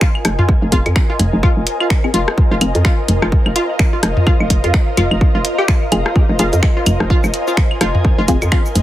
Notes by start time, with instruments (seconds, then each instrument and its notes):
Already playing: ambient pad F4 A#4 D#5 G#5, synth texture C5
0.01 synth pluck F4, finger snap, kick
0.15 claves
0.25 fm bass F1, cross-stick, closed hi-hat, claves
0.39 synth pluck F4, mid tom
0.49 kick
0.62 fm bass F1
0.72 fm bass F1, synth stab C4 F4 G#4, synth pluck F4, kick, closed hi-hat
0.86 fm bass F2, closed hi-hat, claves
0.96 finger snap, kick, claves
1.10 synth pluck F4
1.19 fm bass F1, closed hi-hat, mid tom
1.33 fm bass F1
1.43 synth pluck F4, kick, claves
1.57 fm bass F1
1.67 closed hi-hat
1.80 synth pluck F4, claves
1.90 finger snap, kick
2.04 synth stab C4 F4 G#4, claves
2.14 fm bass F1, synth pluck F4, closed hi-hat
2.28 cross-stick
2.38 kick
2.51 fm bass F1, synth pluck F4
2.61 fm bass F1, synth stab C4 F4 G#4, closed hi-hat, claves
2.75 fm bass F2, ambient pad F5, closed hi-hat
2.85 synth pluck F4, finger snap, kick
3.08 fm bass F1, closed hi-hat, mid tom
3.22 fm bass F1, synth pluck F4, cross-stick, claves
3.32 kick
3.46 fm bass F1, claves
3.56 synth pluck F4, closed hi-hat
3.79 finger snap, kick, claves
3.93 synth pluck F4
4.03 fm bass F1, cross-stick, closed hi-hat
4.17 mid tom
4.27 synth pluck F4, kick, claves
4.40 fm bass F1, claves
4.50 fm bass F1, kick, closed hi-hat
4.64 fm bass F2, synth pluck F4, closed hi-hat
4.74 finger snap, kick
4.97 fm bass F1, synth pluck F4, closed hi-hat, mid tom, claves
5.11 fm bass F1, claves
5.21 kick
5.35 fm bass F1, synth pluck F4
5.45 closed hi-hat
5.58 synth pluck G4, claves
5.68 synth pluck F4, finger snap, kick
5.92 fm bass F1, synth stab C4 F4 G#4, closed hi-hat, claves
6.06 synth pluck F4, cross-stick
6.16 kick
6.29 fm bass F1
6.39 fm bass F1, synth stab C4 F4 G#4, synth pluck F4, closed hi-hat, shaker
6.53 fm bass F2, ambient pad G#5, closed hi-hat, shaker
6.63 finger snap, kick, claves
6.77 synth pluck F4
6.86 fm bass F1, closed hi-hat, mid tom, claves, shaker
7.00 fm bass F1, cross-stick
7.10 synth pluck F4, kick
7.24 fm bass F1, claves, shaker
7.34 closed hi-hat
7.47 synth pluck F4, shaker
7.57 finger snap, kick
7.71 claves
7.81 fm bass F1, synth pluck F4, cross-stick, closed hi-hat, claves
7.95 mid tom
8.05 kick
8.18 fm bass F1, synth pluck F4
8.28 fm bass F1, synth stab C4 F4 G#4, kick, closed hi-hat, shaker
8.42 fm bass F2, closed hi-hat, claves, shaker
8.52 synth pluck F4, finger snap, kick, claves
8.66 shaker
8.75 fm bass F1, closed hi-hat, mid tom, shaker